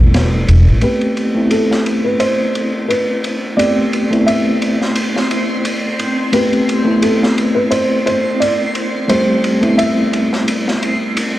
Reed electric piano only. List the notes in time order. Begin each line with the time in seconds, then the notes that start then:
Already playing: G3 A3 B3 C4 E4 G4
0.82 A3 B3 C4 G4
1.35 A3 B3 C4 E4
3.57 A3 B3 C4 G4
4.11 A3 B3 C4 E4
6.32 A3 B3 C4 G4
6.85 A3 B3 C4 E4
9.08 G3 A3 C4 G4
9.61 A3 B3 C4 E4